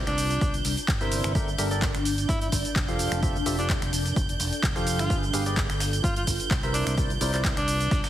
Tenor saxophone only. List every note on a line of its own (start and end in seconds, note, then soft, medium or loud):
0.07 0.54 D4 medium
2.29 2.37 E4 medium
2.41 2.48 E4 medium
3.59 3.69 D4 medium
4.99 5.15 F4 medium
6.04 6.12 F4 medium
6.16 6.23 F4 medium
6.74 6.82 D4 medium
6.87 6.94 D4 medium
7.57 8.04 D4 loud